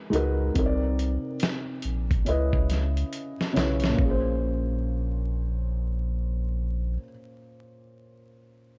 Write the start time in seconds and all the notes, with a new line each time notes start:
Already playing: G#3 D#4 F#4 A#4 B4
0.10 C#2 G#3 D#4 F#4, closed hi-hat
0.14 A#4 B4
0.54 C2 C3 C4 D#4, kick, closed hi-hat
0.58 A#4 C#5
0.65 D5
0.99 closed hi-hat
1.40 snare, closed hi-hat
1.82 A#1, closed hi-hat
2.11 kick, closed hi-hat
2.25 C#2 C#3 C#4 E4 B4, closed hi-hat
2.30 D#5
2.53 kick
2.70 snare, closed hi-hat
2.97 closed hi-hat
3.13 closed hi-hat
3.41 snare
3.53 B1 C#3 C#4 E4, closed hi-hat
3.57 B4 C#5, snare
3.80 snare, closed hi-hat
3.89 A#2
3.94 A#3
3.99 A#1 C#4, kick
4.05 G#4
4.10 C5